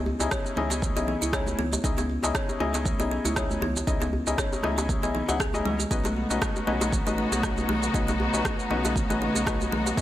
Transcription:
Already playing: C#2
0.06 muted conga, djembe bass
0.20 C#2 C#4 D#4 E4 G#4 D#5, djembe tone, shaker
0.31 C#5, kick, cross-stick, djembe bass, shaker
0.45 muted conga, djembe tone, shaker
0.56 C#2 C#4 D#4 E4 G#4 D#5, high conga, low conga
0.70 B3, djembe slap, djembe tone, shaker
0.82 kick, high conga, low conga, shaker
0.96 B1 B3 C#4 D#4 E4 G#4 D#5, muted conga, djembe tone, shaker
1.07 B3, high conga, low conga
1.21 C#2 E4, djembe tone, shaker
1.33 C#4 D#4 E4 G#4 C#5 D#5, kick, cross-stick, muted conga, shaker
1.46 high conga, djembe tone, shaker
1.59 C#2 B3, high conga, low conga
1.72 muted conga, djembe tone, shaker
1.84 C#2 C#4 D#4 E4 G#4 D#5, kick, shaker
1.98 B3, djembe slap, djembe tone, high conga, shaker
2.10 muted conga
2.23 C#2 C#4 D#4 E4 G#4 D#5, djembe slap, djembe tone, shaker
2.35 C#5, kick, cross-stick, shaker
2.49 muted conga, djembe tone, shaker
2.60 C#2 C#4 D#4 E4 G#4 D#5, high conga
2.74 B3, djembe slap, djembe tone, shaker
2.85 kick, high conga, low conga, shaker
3.00 B1 B3 C#4 D#4 E4 G#4 D#5, muted conga, djembe tone, shaker
3.11 B3
3.24 C#2 E4, high conga, djembe tone, shaker
3.36 C#4 D#4 E4 G#4 C#5 D#5, kick, cross-stick, shaker
3.51 djembe tone, high conga, shaker
3.61 C#2 B3, low conga, djembe bass
3.76 muted conga, djembe tone, shaker
3.87 C#2 C#4 D#4 E4 G#4 D#5, kick, shaker
4.01 B3, djembe slap, djembe tone, high conga, shaker
4.13 muted conga, djembe bass
4.27 C#2 C#4 D#4 E4 G#4 D#5, djembe tone, shaker
4.38 C#5, kick, cross-stick, djembe bass, shaker
4.53 muted conga, djembe tone, shaker
4.63 C#2 C#4 D#4 E4 G#4 D#5, cross-stick, high conga, low conga
4.78 B3, djembe slap, djembe tone, shaker
4.89 kick, high conga, low conga, shaker
5.03 B1 B3 C#4 D#4 E4 G#4 D#5, muted conga, djembe tone, shaker
5.14 B3, high conga, low conga
5.28 C#2 C#4 D#4 E4 G#4 B4 F#5, djembe tone, shaker
5.40 G#4, kick, cross-stick, muted conga, shaker
5.54 C#4 D#4 E4 G#4 D#5, djembe tone, high conga, shaker
5.65 C#2 G#3, high conga, low conga
5.79 muted conga, djembe tone, shaker
5.91 B1 C#3 B3 C#4 D#4 F#4 B4 D#5, kick, shaker
6.04 A3, djembe slap, high conga, djembe tone, shaker
6.16 muted conga
6.30 B1 C#4 D#4 F#4 B4 D#5, djembe slap, djembe tone, shaker
6.42 B4, kick, cross-stick, shaker
6.56 muted conga, djembe tone, shaker
6.67 B1 B3 C#4 D#4 F#4 B4 D#5, high conga
6.81 A3, djembe slap, djembe tone, shaker
6.92 kick, high conga, low conga, shaker
7.07 A1 A3 C#4 D#4 F#4 B4 D#5, muted conga, djembe tone, shaker
7.18 A3
7.32 B1 B3, djembe tone, high conga, shaker
7.43 C#4 D#4 F#4 B4 D#5, kick, cross-stick, shaker
7.57 high conga, djembe tone, shaker
7.69 B1 A3, low conga, djembe bass
7.82 muted conga, djembe tone, shaker
7.94 B1 B3 C#4 D#4 F#4 B4 D#5, kick, shaker
8.08 A3, djembe slap, djembe tone, high conga, shaker
8.20 muted conga, djembe bass
8.34 B1 C#4 D#4 F#4 B4 D#5, djembe tone, shaker
8.45 B4, kick, cross-stick, djembe bass, shaker
8.59 muted conga, djembe tone, shaker
8.70 B1 B3 C#4 D#4 F#4 B4 D#5, high conga, low conga
8.85 A3, djembe slap, djembe tone, shaker
8.96 kick, high conga, low conga, shaker
9.10 A1 A3 C#4 D#4 F#4 B4 D#5, muted conga, djembe tone, shaker
9.21 A3, high conga, low conga
9.34 B1 B3, djembe tone, shaker
9.47 C#4 D#4 F#4 B4 D#5, kick, cross-stick, shaker
9.61 high conga, djembe tone, shaker
9.72 B1 A3, high conga, low conga
9.86 muted conga, djembe tone, shaker
9.97 B1 B3 C#4 D#4 F#4 B4 D#5, kick, shaker

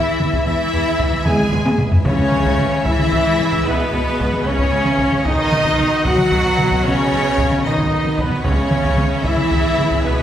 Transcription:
Already playing: E3 G#3 E4 G#4 B4 E5
0.20 E2, taiko mid
0.33 taiko
0.45 E2 E3 E4 E5
0.73 E2
0.99 E2, taiko
1.13 taiko mid
1.25 E2 G#3 G#4 G#5, taiko mid
1.39 taiko mid
1.51 E2, taiko low-mid
1.66 taiko high
1.78 E2, taiko low-mid
1.92 taiko low
2.04 C#2 C#3 G#3 C#4 G#4 C#5, taiko
2.32 C#2, taiko mid
2.46 taiko
2.58 C#2, taiko mid
2.85 C#2 E3 E4 E5, taiko
2.99 taiko mid
3.12 C#2, taiko
3.38 C#2, taiko mid
3.52 taiko
3.64 C#2 B2 B3 B4
3.93 C#2
4.18 C#2, taiko
4.33 taiko mid
4.45 C#2 C#3 C#4 C#5
4.59 taiko
4.72 C#2
4.85 taiko mid
4.98 C#2, taiko
5.12 taiko mid
5.25 B1 D#3 B3 D#4 F#4 B4 D#5, taiko
5.50 B1, taiko mid
5.65 taiko
5.77 B1, taiko mid
6.04 B1 F#3 F#4 F#5, taiko
6.18 taiko mid
6.31 B1, taiko
6.58 B1, taiko mid
6.71 taiko
6.84 B1 C#3 C#4 C#5
7.11 B1
7.38 B1, taiko
7.51 taiko mid
7.64 B1 D#3 D#4 D#5
7.78 taiko
7.92 B1
8.05 taiko mid
8.18 B1 B2 B3 B4, taiko
8.32 taiko mid
8.43 C#2 C#3 C#4 G#4 C#5 E5, taiko
8.71 C#2, taiko mid
8.84 taiko
8.97 C#2, taiko mid
9.23 C#2 E3 E4 E5, taiko
9.37 taiko mid
9.51 C#2, taiko
9.78 C#2, taiko mid
9.91 taiko
10.03 C#2 B2 B3 B4

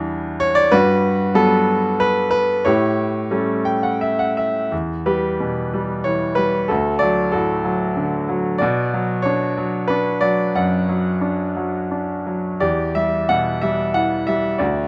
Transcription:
Already playing: E2 G3 D4 E4
0.40 C#5
0.55 D5
0.71 G2 F#4 B4
1.35 F#3 G3 B3 A4
2.00 B4
2.31 B4
2.65 A2 G4 C#5
3.31 G3 A3 C#4
3.65 G5
3.83 F#5
4.01 E5
4.19 F#5
4.37 E5
4.72 E2
5.06 G3 G4 B4
5.40 B2
5.74 G3
6.04 E3 C#5
6.35 G3 B4
6.68 D2 F#4 A4
6.99 F#3 D5
7.32 A2 F#4 A4
7.65 F#3
7.97 D3
8.29 F#3
8.58 B2 F#4 D5
8.94 F#3
9.22 D4 C#5
9.57 F#3
9.88 D4 B4
10.21 F#3 D5
10.55 F#2 D5 F#5
10.89 F#3
11.21 D4
11.56 F#3
11.91 D4
12.27 F#3
12.60 E2 G4 D5
12.95 G3 E5
13.29 B2 F#5
13.61 G3 E5
13.94 E3 F#5
14.27 G3 E5
14.58 D2 F#4 D5

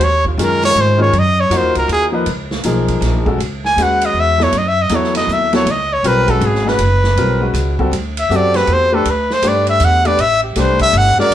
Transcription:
0.00 D#2 C#5, ride
0.25 F4, kick
0.37 F#2 D#3 G#3 C#4 F4, hi-hat pedal, ride
0.42 A#4
0.63 C#5, snare, ride
0.75 G#2, ride
0.81 C5
0.98 D#3 G#3 C#4 F4
1.02 C#5
1.13 F#2, ride
1.19 D#5
1.40 C#5
1.50 F2 A#3 D#4 F4 F#4, hi-hat pedal, ride
1.57 C5
1.63 D#2
1.75 C#2 A#4, ride
1.88 D#2, ride
1.92 G#4
2.12 F3 A#3 D#4 B4
2.26 C#2, ride
2.51 snare
2.63 B1 F3 A#3 D#4 G#4, hi-hat pedal, ride
2.88 kick, ride
3.01 A#1, snare, ride
3.26 G#3 C#4 F#4 A4, kick
3.38 C#2, ride
3.65 G#5, snare
3.76 D#2 G#3 C#4 F#4 B4, hi-hat pedal, ride
3.82 F#5
4.01 D#5, ride
4.14 E2
4.20 E5
4.38 F#3 B3 E4 A4, snare
4.43 C#5
4.52 F#2, ride
4.58 D#5
4.68 E5
4.82 D#5
4.89 E2 F#3 B3 E4 A4, hi-hat pedal, ride
4.95 C#5
5.04 snare
5.15 D#5, snare, ride
5.27 D#2, hi-hat pedal
5.33 E5
5.52 F#3 B3 E4 A4 C#5, snare, ride
5.65 C#2, ride
5.71 D#5
5.93 C#5
6.03 B1 G3 C4 F4 A#4, hi-hat pedal, ride
6.07 B4
6.27 G#3 C#4 F#4 A4 B4, kick, ride
6.41 G#1, ride
6.46 G#4
6.55 snare
6.65 G#3 C#4 F#4 B4, snare
6.79 F#1, ride
7.04 snare
7.16 B1 G3 C4 F4 A#4, ride
7.41 G#3 C#4 F#4 B4
7.54 C#2, hi-hat pedal, ride
7.79 G3 C4 F#4 A4, kick
7.91 D2, ride
8.17 E5, ride
8.29 F#2 C4 F#4 G4 A4, hi-hat pedal
8.36 D5
8.54 B4, snare, ride
8.67 E2, ride
8.73 C5
8.92 A3 D4 G4 A4 B4
9.05 D2, ride
9.10 B4
9.30 C5, snare
9.42 G2 A3 D4 G4 B4, hi-hat pedal, ride
9.48 D5
9.67 E5, ride
9.80 E2, hi-hat pedal, ride
9.84 F#5
10.05 A3 D4 G4 B4 D5, ride
10.18 A1 E5, ride
10.43 G4
10.56 C2 A3 D4 G4 B4 C5, snare, hi-hat pedal, ride
10.79 E5, kick, ride
10.93 G1, ride
10.97 F#5
11.06 snare
11.18 G#3 C#4 F#4 A#4 D5, snare
11.30 A#1

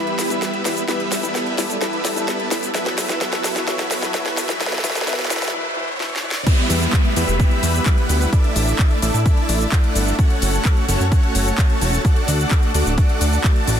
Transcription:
Already playing: G3 B3 E4 G4 B4 E5 B5, riser
0.07 closed hi-hat
0.19 E2, snare, open hi-hat, shaker
0.30 E3 G3 B3 E4, closed hi-hat, shaker
0.42 snare, closed hi-hat, shaker
0.54 closed hi-hat
0.65 E2 E3 G3 B3 E4 B4 E5, snare, open hi-hat, shaker
0.77 closed hi-hat, shaker
0.88 E3 G3 B3 E4 A4 B4 D5 E5 A5, snare, closed hi-hat, shaker
1.00 closed hi-hat
1.12 A1, snare, open hi-hat, shaker
1.23 E3 G3 B3 E4, closed hi-hat, shaker
1.35 snare, closed hi-hat, shaker
1.46 closed hi-hat
1.58 A1 E3 G3 B3 E4 B4 E5, snare, open hi-hat, shaker
1.70 A2, closed hi-hat, shaker
1.81 E3 G3 B3 E4 B4 E5, snare, closed hi-hat, shaker
1.93 closed hi-hat
2.05 A1, snare, open hi-hat, shaker
2.16 E3 G3 B3 E4, closed hi-hat, shaker
2.28 snare, closed hi-hat, shaker
2.40 closed hi-hat
2.51 A1 E3 G3 B3 E4 B4 E5, snare, open hi-hat, shaker
2.63 closed hi-hat, shaker
2.74 E3 F#3 B3 E4 F#4 B4 C#5 E5, snare, closed hi-hat, shaker
2.86 snare, closed hi-hat
2.98 F#1, snare, open hi-hat, shaker
3.09 E3 F#3 B3 E4, snare, closed hi-hat, shaker
3.20 E3 F#3 B3 E4 B4 E5, snare, closed hi-hat, shaker
3.33 snare, closed hi-hat
3.44 F#1, snare, open hi-hat, shaker
3.55 F#2 E3 F#3 B3 E4, snare, closed hi-hat, shaker
3.67 E3 F#3 B3 E4 B4 E5, snare, closed hi-hat, shaker
3.79 snare, closed hi-hat
3.91 F#1, snare, open hi-hat, shaker
4.02 E3 F#3 B3 E4, snare, closed hi-hat, shaker
4.13 E3 F#3 B3 E4 B4 E5, snare, closed hi-hat, shaker
4.26 snare, closed hi-hat
4.37 F#1, snare, open hi-hat, shaker
4.48 E3 F#3 B3 E4, snare, closed hi-hat, shaker
4.60 E3 F#3 B3 E4 B4 D5 E5, snare, closed hi-hat, shaker
4.66 snare
4.72 snare, closed hi-hat
4.78 snare
4.83 D2 E3 F#3 B3 E4 B4 E5, snare, open hi-hat, shaker
4.90 snare
4.95 snare, closed hi-hat, shaker
5.01 snare
5.06 E3 F#3 B3 E4 B4 E5, snare, closed hi-hat, shaker
5.13 snare
5.19 snare, closed hi-hat
5.25 snare
5.30 D2 E3 F#3 B3 E4 B4 E5, snare, open hi-hat, shaker
5.36 snare
5.42 D1, snare, closed hi-hat, shaker
5.48 snare
5.53 E3 F#3 B3 E4
5.76 E3 F#3 B3 E4
5.99 E3 F#3 B3 E4, snare
6.16 snare
6.23 E3 F#3 B3 E4
6.31 snare
6.47 G3 B3 E4 G4 B4 E5 B5, kick, closed hi-hat, crash, downlifter, shaker
6.58 closed hi-hat
6.70 E2, open hi-hat, shaker
6.81 closed hi-hat, shaker
6.93 kick, clap, closed hi-hat, shaker
7.05 closed hi-hat
7.16 E2 G3 B3 E4 B4 E5, open hi-hat, shaker
7.28 E1, closed hi-hat, shaker
7.40 G3 B3 E4 B4 E5, kick, closed hi-hat, shaker
7.51 closed hi-hat
7.63 E2, open hi-hat, shaker
7.75 closed hi-hat, shaker
7.86 G3 E4, kick, clap, closed hi-hat, shaker
7.98 closed hi-hat
8.09 D2, open hi-hat, shaker
8.21 closed hi-hat, shaker
8.33 A3 D4 E4 A4 D5 E5 A5, kick, closed hi-hat, shaker
8.44 closed hi-hat
8.56 A1, open hi-hat, shaker
8.68 closed hi-hat, shaker
8.79 kick, clap, closed hi-hat, shaker
8.91 closed hi-hat
9.02 A1 A3 D4 E4 D5 E5, open hi-hat, shaker
9.14 A2, closed hi-hat, shaker
9.26 A3 D4 E4 D5 E5, kick, closed hi-hat, shaker
9.37 closed hi-hat
9.49 A1, open hi-hat, shaker
9.61 closed hi-hat, shaker
9.72 A3 D4 E4 D5 F#5, kick, clap, closed hi-hat, shaker
9.84 closed hi-hat
9.95 G1, open hi-hat, shaker
10.07 closed hi-hat, shaker
10.19 A3 C#4 F#4 C#5, kick, closed hi-hat, shaker
10.30 closed hi-hat
10.42 F#1, open hi-hat, shaker
10.54 closed hi-hat, shaker
10.65 kick, clap, closed hi-hat, shaker
10.77 closed hi-hat
10.88 F#1 A3 C#4 F#4 C#5 F#5, open hi-hat, shaker
11.00 F#2, closed hi-hat, shaker
11.12 A3 C#4 F#4 C#5 F#5, kick, closed hi-hat, shaker
11.23 closed hi-hat
11.35 F#1, open hi-hat, shaker
11.47 closed hi-hat, shaker
11.58 C#4 C#5, kick, clap, closed hi-hat, shaker
11.70 closed hi-hat
11.81 E1, open hi-hat, shaker
11.93 closed hi-hat, shaker
12.05 A3 D4 F#4 D5 F#5, kick, closed hi-hat, shaker
12.16 closed hi-hat
12.28 D2, open hi-hat, shaker
12.40 closed hi-hat, shaker
12.51 kick, clap, closed hi-hat, shaker
12.63 closed hi-hat
12.74 D2 A3 D4 F#4 D5 F#5, open hi-hat, shaker
12.86 D1, closed hi-hat, shaker
12.98 A3 D4 F#4 D5, kick, closed hi-hat, shaker
13.09 closed hi-hat
13.21 D2, open hi-hat, shaker
13.33 closed hi-hat, shaker
13.44 A3 D4, kick, clap, closed hi-hat, shaker
13.56 closed hi-hat
13.67 A1, open hi-hat, shaker

